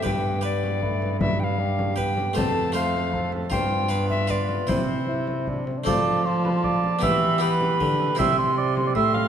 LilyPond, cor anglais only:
\new Staff \with { instrumentName = "Cor anglais" } { \time 3/4 \key c \major \tempo 4 = 155 g'2 b'4 | b'4 g'2 | a'4 c''4 a'4 | f'4 f'4 f'4 |
e'2~ e'8 r8 | d''4 c''8 b'16 c''16 d''4 | e''4 b'2 | e''8 c''8 d''8 c''16 d''16 e''8 f''8 | }